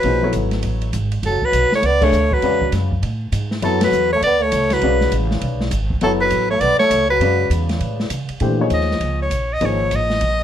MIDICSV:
0, 0, Header, 1, 7, 480
1, 0, Start_track
1, 0, Tempo, 299252
1, 67, Time_signature, 4, 2, 24, 8
1, 16741, End_track
2, 0, Start_track
2, 0, Title_t, "Soprano saxophone"
2, 0, Program_c, 0, 64
2, 0, Note_on_c, 0, 71, 84
2, 532, Note_off_c, 0, 71, 0
2, 2020, Note_on_c, 0, 69, 90
2, 2320, Note_on_c, 0, 71, 107
2, 2344, Note_off_c, 0, 69, 0
2, 2782, Note_off_c, 0, 71, 0
2, 2813, Note_on_c, 0, 73, 96
2, 2988, Note_on_c, 0, 74, 104
2, 3012, Note_off_c, 0, 73, 0
2, 3272, Note_on_c, 0, 73, 99
2, 3296, Note_off_c, 0, 74, 0
2, 3745, Note_on_c, 0, 71, 99
2, 3769, Note_off_c, 0, 73, 0
2, 4395, Note_off_c, 0, 71, 0
2, 5843, Note_on_c, 0, 69, 88
2, 6111, Note_off_c, 0, 69, 0
2, 6157, Note_on_c, 0, 71, 92
2, 6586, Note_off_c, 0, 71, 0
2, 6623, Note_on_c, 0, 73, 96
2, 6781, Note_off_c, 0, 73, 0
2, 6794, Note_on_c, 0, 74, 95
2, 7097, Note_on_c, 0, 73, 92
2, 7121, Note_off_c, 0, 74, 0
2, 7593, Note_on_c, 0, 71, 92
2, 7617, Note_off_c, 0, 73, 0
2, 8237, Note_off_c, 0, 71, 0
2, 9675, Note_on_c, 0, 69, 90
2, 9806, Note_off_c, 0, 69, 0
2, 9959, Note_on_c, 0, 71, 99
2, 10405, Note_off_c, 0, 71, 0
2, 10434, Note_on_c, 0, 73, 99
2, 10597, Note_on_c, 0, 74, 109
2, 10621, Note_off_c, 0, 73, 0
2, 10887, Note_off_c, 0, 74, 0
2, 10896, Note_on_c, 0, 73, 109
2, 11353, Note_off_c, 0, 73, 0
2, 11394, Note_on_c, 0, 71, 95
2, 12012, Note_off_c, 0, 71, 0
2, 14019, Note_on_c, 0, 75, 73
2, 14728, Note_off_c, 0, 75, 0
2, 14794, Note_on_c, 0, 73, 71
2, 15288, Note_on_c, 0, 75, 90
2, 15312, Note_off_c, 0, 73, 0
2, 15483, Note_on_c, 0, 73, 79
2, 15507, Note_off_c, 0, 75, 0
2, 15967, Note_on_c, 0, 75, 98
2, 15992, Note_off_c, 0, 73, 0
2, 16718, Note_off_c, 0, 75, 0
2, 16741, End_track
3, 0, Start_track
3, 0, Title_t, "Upright piano"
3, 0, Program_c, 1, 0
3, 70, Note_on_c, 1, 53, 51
3, 77, Note_on_c, 1, 58, 52
3, 87, Note_on_c, 1, 63, 47
3, 93, Note_on_c, 1, 68, 51
3, 103, Note_on_c, 1, 72, 60
3, 338, Note_off_c, 1, 53, 0
3, 341, Note_off_c, 1, 58, 0
3, 346, Note_off_c, 1, 63, 0
3, 349, Note_off_c, 1, 68, 0
3, 354, Note_off_c, 1, 72, 0
3, 356, Note_on_c, 1, 54, 59
3, 364, Note_on_c, 1, 59, 56
3, 369, Note_on_c, 1, 64, 55
3, 375, Note_on_c, 1, 69, 53
3, 384, Note_on_c, 1, 73, 69
3, 1393, Note_off_c, 1, 54, 0
3, 1397, Note_off_c, 1, 59, 0
3, 1399, Note_off_c, 1, 64, 0
3, 1403, Note_off_c, 1, 69, 0
3, 1407, Note_off_c, 1, 73, 0
3, 3226, Note_on_c, 1, 57, 68
3, 3238, Note_on_c, 1, 62, 60
3, 3243, Note_on_c, 1, 68, 57
3, 3248, Note_on_c, 1, 73, 58
3, 3254, Note_on_c, 1, 76, 69
3, 3398, Note_off_c, 1, 57, 0
3, 3404, Note_off_c, 1, 62, 0
3, 3406, Note_off_c, 1, 68, 0
3, 3409, Note_off_c, 1, 73, 0
3, 3412, Note_off_c, 1, 76, 0
3, 3898, Note_on_c, 1, 56, 60
3, 3903, Note_on_c, 1, 49, 53
3, 3911, Note_on_c, 1, 66, 55
3, 3914, Note_on_c, 1, 71, 52
3, 3929, Note_on_c, 1, 74, 66
3, 4620, Note_off_c, 1, 56, 0
3, 4622, Note_off_c, 1, 49, 0
3, 4626, Note_off_c, 1, 66, 0
3, 4628, Note_off_c, 1, 71, 0
3, 4635, Note_off_c, 1, 74, 0
3, 5810, Note_on_c, 1, 54, 68
3, 5814, Note_on_c, 1, 59, 59
3, 5821, Note_on_c, 1, 64, 57
3, 5826, Note_on_c, 1, 69, 57
3, 5835, Note_on_c, 1, 73, 63
3, 6534, Note_off_c, 1, 54, 0
3, 6536, Note_off_c, 1, 59, 0
3, 6540, Note_off_c, 1, 64, 0
3, 6543, Note_off_c, 1, 69, 0
3, 6547, Note_off_c, 1, 73, 0
3, 7740, Note_on_c, 1, 56, 69
3, 7751, Note_on_c, 1, 49, 58
3, 7754, Note_on_c, 1, 66, 60
3, 7757, Note_on_c, 1, 71, 60
3, 7768, Note_on_c, 1, 74, 68
3, 9071, Note_off_c, 1, 56, 0
3, 9076, Note_off_c, 1, 49, 0
3, 9078, Note_off_c, 1, 66, 0
3, 9079, Note_off_c, 1, 71, 0
3, 9085, Note_off_c, 1, 74, 0
3, 9645, Note_on_c, 1, 54, 72
3, 9653, Note_on_c, 1, 59, 65
3, 9668, Note_on_c, 1, 64, 60
3, 9675, Note_on_c, 1, 69, 66
3, 9678, Note_on_c, 1, 73, 75
3, 10984, Note_off_c, 1, 54, 0
3, 10988, Note_off_c, 1, 59, 0
3, 10995, Note_off_c, 1, 64, 0
3, 10999, Note_off_c, 1, 69, 0
3, 11000, Note_off_c, 1, 73, 0
3, 11563, Note_on_c, 1, 56, 55
3, 11574, Note_on_c, 1, 49, 56
3, 11579, Note_on_c, 1, 66, 54
3, 11588, Note_on_c, 1, 71, 55
3, 11595, Note_on_c, 1, 74, 65
3, 12904, Note_off_c, 1, 56, 0
3, 12910, Note_off_c, 1, 49, 0
3, 12912, Note_off_c, 1, 66, 0
3, 12917, Note_off_c, 1, 71, 0
3, 12920, Note_off_c, 1, 74, 0
3, 13485, Note_on_c, 1, 52, 55
3, 13493, Note_on_c, 1, 57, 54
3, 13503, Note_on_c, 1, 62, 49
3, 13506, Note_on_c, 1, 67, 52
3, 13517, Note_on_c, 1, 72, 58
3, 13763, Note_off_c, 1, 52, 0
3, 13767, Note_off_c, 1, 57, 0
3, 13772, Note_off_c, 1, 62, 0
3, 13774, Note_off_c, 1, 67, 0
3, 13779, Note_off_c, 1, 72, 0
3, 13780, Note_on_c, 1, 53, 62
3, 13789, Note_on_c, 1, 58, 54
3, 13800, Note_on_c, 1, 63, 58
3, 13811, Note_on_c, 1, 68, 57
3, 13815, Note_on_c, 1, 73, 72
3, 14825, Note_off_c, 1, 53, 0
3, 14830, Note_off_c, 1, 58, 0
3, 14835, Note_off_c, 1, 63, 0
3, 14841, Note_off_c, 1, 68, 0
3, 14842, Note_off_c, 1, 73, 0
3, 15409, Note_on_c, 1, 53, 56
3, 15416, Note_on_c, 1, 58, 51
3, 15424, Note_on_c, 1, 63, 51
3, 15429, Note_on_c, 1, 68, 54
3, 15437, Note_on_c, 1, 73, 59
3, 16741, Note_off_c, 1, 53, 0
3, 16741, Note_off_c, 1, 58, 0
3, 16741, Note_off_c, 1, 63, 0
3, 16741, Note_off_c, 1, 68, 0
3, 16741, Note_off_c, 1, 73, 0
3, 16741, End_track
4, 0, Start_track
4, 0, Title_t, "Trombone"
4, 0, Program_c, 2, 57
4, 0, Note_on_c, 2, 54, 70
4, 512, Note_off_c, 2, 54, 0
4, 2008, Note_on_c, 2, 54, 74
4, 2310, Note_off_c, 2, 54, 0
4, 2310, Note_on_c, 2, 54, 76
4, 2777, Note_off_c, 2, 54, 0
4, 2783, Note_on_c, 2, 57, 77
4, 2951, Note_on_c, 2, 59, 77
4, 2975, Note_off_c, 2, 57, 0
4, 3257, Note_on_c, 2, 57, 86
4, 3281, Note_off_c, 2, 59, 0
4, 3736, Note_on_c, 2, 54, 74
4, 3760, Note_off_c, 2, 57, 0
4, 4390, Note_off_c, 2, 54, 0
4, 5840, Note_on_c, 2, 54, 78
4, 6109, Note_off_c, 2, 54, 0
4, 6149, Note_on_c, 2, 54, 73
4, 6582, Note_off_c, 2, 54, 0
4, 6617, Note_on_c, 2, 57, 80
4, 6778, Note_off_c, 2, 57, 0
4, 6800, Note_on_c, 2, 59, 79
4, 7092, Note_on_c, 2, 57, 90
4, 7116, Note_off_c, 2, 59, 0
4, 7583, Note_on_c, 2, 54, 75
4, 7607, Note_off_c, 2, 57, 0
4, 8232, Note_off_c, 2, 54, 0
4, 9667, Note_on_c, 2, 54, 78
4, 9799, Note_off_c, 2, 54, 0
4, 9951, Note_on_c, 2, 54, 77
4, 10401, Note_off_c, 2, 54, 0
4, 10425, Note_on_c, 2, 57, 89
4, 10603, Note_on_c, 2, 59, 89
4, 10627, Note_off_c, 2, 57, 0
4, 10881, Note_off_c, 2, 59, 0
4, 10891, Note_on_c, 2, 57, 94
4, 11350, Note_off_c, 2, 57, 0
4, 11376, Note_on_c, 2, 54, 69
4, 12002, Note_off_c, 2, 54, 0
4, 16741, End_track
5, 0, Start_track
5, 0, Title_t, "Upright bass"
5, 0, Program_c, 3, 32
5, 61, Note_on_c, 3, 35, 81
5, 529, Note_off_c, 3, 35, 0
5, 540, Note_on_c, 3, 32, 84
5, 1009, Note_off_c, 3, 32, 0
5, 1025, Note_on_c, 3, 33, 81
5, 1485, Note_off_c, 3, 33, 0
5, 1494, Note_on_c, 3, 32, 89
5, 1959, Note_off_c, 3, 32, 0
5, 1969, Note_on_c, 3, 30, 83
5, 2255, Note_off_c, 3, 30, 0
5, 2443, Note_on_c, 3, 35, 80
5, 2731, Note_off_c, 3, 35, 0
5, 2926, Note_on_c, 3, 37, 81
5, 3395, Note_off_c, 3, 37, 0
5, 3404, Note_on_c, 3, 38, 85
5, 3879, Note_off_c, 3, 38, 0
5, 3888, Note_on_c, 3, 40, 73
5, 4357, Note_off_c, 3, 40, 0
5, 4367, Note_on_c, 3, 42, 86
5, 4840, Note_off_c, 3, 42, 0
5, 4852, Note_on_c, 3, 45, 85
5, 5316, Note_off_c, 3, 45, 0
5, 5326, Note_on_c, 3, 44, 81
5, 5796, Note_off_c, 3, 44, 0
5, 5805, Note_on_c, 3, 42, 77
5, 6275, Note_off_c, 3, 42, 0
5, 6285, Note_on_c, 3, 40, 81
5, 6754, Note_off_c, 3, 40, 0
5, 6763, Note_on_c, 3, 38, 82
5, 7237, Note_off_c, 3, 38, 0
5, 7255, Note_on_c, 3, 37, 95
5, 7717, Note_off_c, 3, 37, 0
5, 7727, Note_on_c, 3, 35, 73
5, 8199, Note_off_c, 3, 35, 0
5, 8208, Note_on_c, 3, 33, 91
5, 8679, Note_off_c, 3, 33, 0
5, 8686, Note_on_c, 3, 35, 88
5, 9146, Note_off_c, 3, 35, 0
5, 9156, Note_on_c, 3, 32, 85
5, 9633, Note_off_c, 3, 32, 0
5, 9648, Note_on_c, 3, 30, 85
5, 10119, Note_off_c, 3, 30, 0
5, 10130, Note_on_c, 3, 33, 86
5, 10592, Note_off_c, 3, 33, 0
5, 10602, Note_on_c, 3, 35, 82
5, 10888, Note_off_c, 3, 35, 0
5, 11073, Note_on_c, 3, 37, 89
5, 11534, Note_off_c, 3, 37, 0
5, 11544, Note_on_c, 3, 42, 80
5, 12018, Note_off_c, 3, 42, 0
5, 12028, Note_on_c, 3, 40, 84
5, 12506, Note_off_c, 3, 40, 0
5, 12516, Note_on_c, 3, 45, 80
5, 12990, Note_off_c, 3, 45, 0
5, 13000, Note_on_c, 3, 49, 84
5, 13288, Note_off_c, 3, 49, 0
5, 13485, Note_on_c, 3, 46, 83
5, 13951, Note_off_c, 3, 46, 0
5, 13961, Note_on_c, 3, 39, 75
5, 14428, Note_off_c, 3, 39, 0
5, 14438, Note_on_c, 3, 37, 76
5, 14907, Note_off_c, 3, 37, 0
5, 14917, Note_on_c, 3, 34, 85
5, 15397, Note_off_c, 3, 34, 0
5, 15413, Note_on_c, 3, 32, 80
5, 15886, Note_off_c, 3, 32, 0
5, 15899, Note_on_c, 3, 33, 83
5, 16369, Note_off_c, 3, 33, 0
5, 16379, Note_on_c, 3, 34, 82
5, 16741, Note_off_c, 3, 34, 0
5, 16741, End_track
6, 0, Start_track
6, 0, Title_t, "Muted upright bass strokes"
6, 2267, Note_on_c, 9, 29, 39
6, 2427, Note_off_c, 9, 29, 0
6, 2746, Note_on_c, 9, 29, 37
6, 2906, Note_off_c, 9, 29, 0
6, 10899, Note_on_c, 9, 29, 39
6, 11060, Note_off_c, 9, 29, 0
6, 13307, Note_on_c, 9, 29, 37
6, 13467, Note_off_c, 9, 29, 0
6, 16741, End_track
7, 0, Start_track
7, 0, Title_t, "Drums"
7, 47, Note_on_c, 9, 51, 54
7, 207, Note_off_c, 9, 51, 0
7, 524, Note_on_c, 9, 44, 56
7, 524, Note_on_c, 9, 51, 55
7, 684, Note_off_c, 9, 44, 0
7, 684, Note_off_c, 9, 51, 0
7, 820, Note_on_c, 9, 51, 44
7, 827, Note_on_c, 9, 38, 34
7, 981, Note_off_c, 9, 51, 0
7, 987, Note_off_c, 9, 38, 0
7, 1003, Note_on_c, 9, 51, 65
7, 1164, Note_off_c, 9, 51, 0
7, 1308, Note_on_c, 9, 51, 44
7, 1468, Note_off_c, 9, 51, 0
7, 1490, Note_on_c, 9, 44, 63
7, 1490, Note_on_c, 9, 51, 65
7, 1650, Note_off_c, 9, 44, 0
7, 1650, Note_off_c, 9, 51, 0
7, 1790, Note_on_c, 9, 51, 48
7, 1950, Note_off_c, 9, 51, 0
7, 1974, Note_on_c, 9, 51, 59
7, 2134, Note_off_c, 9, 51, 0
7, 2277, Note_on_c, 9, 36, 51
7, 2438, Note_off_c, 9, 36, 0
7, 2456, Note_on_c, 9, 44, 47
7, 2456, Note_on_c, 9, 51, 65
7, 2616, Note_off_c, 9, 44, 0
7, 2616, Note_off_c, 9, 51, 0
7, 2763, Note_on_c, 9, 38, 54
7, 2923, Note_off_c, 9, 38, 0
7, 2933, Note_on_c, 9, 51, 62
7, 3093, Note_off_c, 9, 51, 0
7, 3234, Note_on_c, 9, 49, 81
7, 3235, Note_on_c, 9, 36, 85
7, 3395, Note_off_c, 9, 36, 0
7, 3395, Note_off_c, 9, 49, 0
7, 3410, Note_on_c, 9, 44, 59
7, 3571, Note_off_c, 9, 44, 0
7, 3715, Note_on_c, 9, 36, 65
7, 3875, Note_off_c, 9, 36, 0
7, 3885, Note_on_c, 9, 51, 52
7, 4045, Note_off_c, 9, 51, 0
7, 4193, Note_on_c, 9, 36, 60
7, 4354, Note_off_c, 9, 36, 0
7, 4366, Note_on_c, 9, 44, 48
7, 4366, Note_on_c, 9, 51, 62
7, 4372, Note_on_c, 9, 38, 32
7, 4526, Note_off_c, 9, 44, 0
7, 4526, Note_off_c, 9, 51, 0
7, 4533, Note_off_c, 9, 38, 0
7, 4678, Note_on_c, 9, 36, 55
7, 4839, Note_off_c, 9, 36, 0
7, 4855, Note_on_c, 9, 51, 60
7, 5015, Note_off_c, 9, 51, 0
7, 5331, Note_on_c, 9, 44, 55
7, 5331, Note_on_c, 9, 51, 72
7, 5491, Note_off_c, 9, 44, 0
7, 5491, Note_off_c, 9, 51, 0
7, 5633, Note_on_c, 9, 38, 44
7, 5793, Note_off_c, 9, 38, 0
7, 5810, Note_on_c, 9, 51, 65
7, 5971, Note_off_c, 9, 51, 0
7, 6109, Note_on_c, 9, 51, 69
7, 6116, Note_on_c, 9, 38, 79
7, 6270, Note_off_c, 9, 51, 0
7, 6276, Note_off_c, 9, 38, 0
7, 6293, Note_on_c, 9, 44, 57
7, 6453, Note_off_c, 9, 44, 0
7, 6776, Note_on_c, 9, 51, 62
7, 6937, Note_off_c, 9, 51, 0
7, 7245, Note_on_c, 9, 44, 58
7, 7245, Note_on_c, 9, 51, 75
7, 7406, Note_off_c, 9, 44, 0
7, 7406, Note_off_c, 9, 51, 0
7, 7541, Note_on_c, 9, 51, 51
7, 7547, Note_on_c, 9, 38, 56
7, 7701, Note_off_c, 9, 51, 0
7, 7708, Note_off_c, 9, 38, 0
7, 7723, Note_on_c, 9, 51, 55
7, 7883, Note_off_c, 9, 51, 0
7, 8033, Note_on_c, 9, 38, 47
7, 8193, Note_off_c, 9, 38, 0
7, 8207, Note_on_c, 9, 44, 46
7, 8207, Note_on_c, 9, 51, 64
7, 8367, Note_off_c, 9, 44, 0
7, 8367, Note_off_c, 9, 51, 0
7, 8516, Note_on_c, 9, 38, 50
7, 8677, Note_off_c, 9, 38, 0
7, 8684, Note_on_c, 9, 51, 67
7, 8845, Note_off_c, 9, 51, 0
7, 8993, Note_on_c, 9, 38, 58
7, 9153, Note_off_c, 9, 38, 0
7, 9160, Note_on_c, 9, 44, 58
7, 9160, Note_on_c, 9, 51, 75
7, 9321, Note_off_c, 9, 44, 0
7, 9321, Note_off_c, 9, 51, 0
7, 9469, Note_on_c, 9, 36, 65
7, 9629, Note_off_c, 9, 36, 0
7, 9639, Note_on_c, 9, 51, 60
7, 9800, Note_off_c, 9, 51, 0
7, 10112, Note_on_c, 9, 44, 43
7, 10112, Note_on_c, 9, 51, 61
7, 10273, Note_off_c, 9, 44, 0
7, 10273, Note_off_c, 9, 51, 0
7, 10598, Note_on_c, 9, 51, 60
7, 10758, Note_off_c, 9, 51, 0
7, 10900, Note_on_c, 9, 38, 42
7, 11061, Note_off_c, 9, 38, 0
7, 11080, Note_on_c, 9, 44, 58
7, 11080, Note_on_c, 9, 51, 75
7, 11240, Note_off_c, 9, 44, 0
7, 11240, Note_off_c, 9, 51, 0
7, 11564, Note_on_c, 9, 51, 58
7, 11724, Note_off_c, 9, 51, 0
7, 12044, Note_on_c, 9, 44, 56
7, 12044, Note_on_c, 9, 51, 64
7, 12204, Note_off_c, 9, 44, 0
7, 12204, Note_off_c, 9, 51, 0
7, 12338, Note_on_c, 9, 51, 47
7, 12344, Note_on_c, 9, 38, 49
7, 12498, Note_off_c, 9, 51, 0
7, 12504, Note_off_c, 9, 38, 0
7, 12519, Note_on_c, 9, 51, 58
7, 12679, Note_off_c, 9, 51, 0
7, 12826, Note_on_c, 9, 38, 50
7, 12986, Note_off_c, 9, 38, 0
7, 12993, Note_on_c, 9, 44, 67
7, 12993, Note_on_c, 9, 51, 74
7, 13154, Note_off_c, 9, 44, 0
7, 13154, Note_off_c, 9, 51, 0
7, 13291, Note_on_c, 9, 51, 52
7, 13452, Note_off_c, 9, 51, 0
7, 13473, Note_on_c, 9, 51, 52
7, 13634, Note_off_c, 9, 51, 0
7, 13956, Note_on_c, 9, 44, 51
7, 13956, Note_on_c, 9, 51, 56
7, 14117, Note_off_c, 9, 44, 0
7, 14117, Note_off_c, 9, 51, 0
7, 14128, Note_on_c, 9, 38, 27
7, 14288, Note_off_c, 9, 38, 0
7, 14293, Note_on_c, 9, 38, 42
7, 14446, Note_on_c, 9, 51, 61
7, 14453, Note_off_c, 9, 38, 0
7, 14606, Note_off_c, 9, 51, 0
7, 14931, Note_on_c, 9, 44, 58
7, 14931, Note_on_c, 9, 51, 68
7, 15091, Note_off_c, 9, 44, 0
7, 15091, Note_off_c, 9, 51, 0
7, 15411, Note_on_c, 9, 51, 62
7, 15572, Note_off_c, 9, 51, 0
7, 15896, Note_on_c, 9, 44, 55
7, 15896, Note_on_c, 9, 51, 58
7, 16057, Note_off_c, 9, 44, 0
7, 16057, Note_off_c, 9, 51, 0
7, 16201, Note_on_c, 9, 38, 46
7, 16362, Note_off_c, 9, 38, 0
7, 16373, Note_on_c, 9, 51, 64
7, 16533, Note_off_c, 9, 51, 0
7, 16741, End_track
0, 0, End_of_file